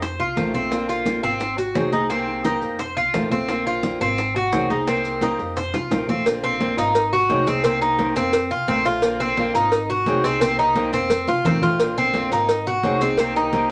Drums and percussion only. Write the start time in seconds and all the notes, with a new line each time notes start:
0.02 high bongo, high conga, maracas
0.20 high conga
0.37 high bongo, low bongo, high conga, maracas
0.54 high bongo, high conga, maracas
0.71 high bongo, high conga, maracas
0.89 high conga, maracas
1.06 high bongo, high conga, maracas
1.23 high conga, maracas
1.40 high bongo, high conga, maracas
1.58 high conga, maracas
1.75 high bongo, low bongo, high conga, maracas
1.93 high conga, maracas
2.10 high bongo, maracas
2.28 high bongo, high conga
2.45 high bongo, high conga, maracas
2.62 high bongo, high conga, maracas
2.79 high bongo, high conga, maracas
2.97 high conga
3.14 high bongo, low bongo, high conga, maracas
3.31 high bongo, high conga, maracas
3.48 high bongo, high conga, maracas
3.66 high conga
3.83 high bongo, high conga, maracas
4.01 high conga, maracas
4.18 high bongo, high conga, maracas
4.35 high conga
4.52 high bongo, low bongo, high conga, maracas
4.70 high conga, maracas
4.87 high bongo, high conga, maracas
5.04 high bongo, high conga, maracas
5.21 high bongo, high conga, maracas
5.39 high bongo, high conga, maracas
5.57 high bongo, high conga, maracas
5.74 high bongo, high conga, maracas
5.91 high bongo, high conga, maracas
6.09 low bongo, high conga, maracas
6.26 cowbell, high conga, maracas
6.43 high conga, maracas
6.61 cowbell, high conga, maracas
6.78 cowbell, high conga, maracas
6.95 cowbell, high conga, maracas
7.12 high conga, maracas
7.30 cowbell, high conga, maracas
7.47 high conga, maracas
7.64 cowbell, high conga, maracas
7.82 high conga, maracas
7.99 cowbell, high conga, maracas
8.16 cowbell, high conga, maracas
8.33 cowbell, high conga, maracas
8.51 high conga, maracas
8.68 cowbell, high conga, maracas
8.85 high conga, maracas
9.02 cowbell, high conga, maracas
9.20 high conga, maracas
9.37 cowbell, high conga, maracas
9.55 cowbell, high conga, maracas
9.72 cowbell, high conga, maracas
9.89 high conga, maracas
10.06 cowbell, high conga, maracas
10.24 maracas
10.41 cowbell, high conga, maracas
10.58 high conga, maracas
10.75 cowbell, high conga, maracas
10.93 cowbell, high conga, maracas
11.10 cowbell, high conga, maracas
11.28 high conga, maracas
11.45 cowbell, low conga, maracas
11.62 low conga, maracas
11.80 cowbell, maracas
11.97 high conga, maracas
12.14 cowbell, high conga, maracas
12.32 cowbell, high conga, maracas
12.49 cowbell, high conga, maracas
12.66 high conga, maracas
12.83 cowbell, high conga, maracas
13.01 maracas
13.18 cowbell, high conga, maracas
13.36 high conga, maracas
13.53 cowbell, high conga, maracas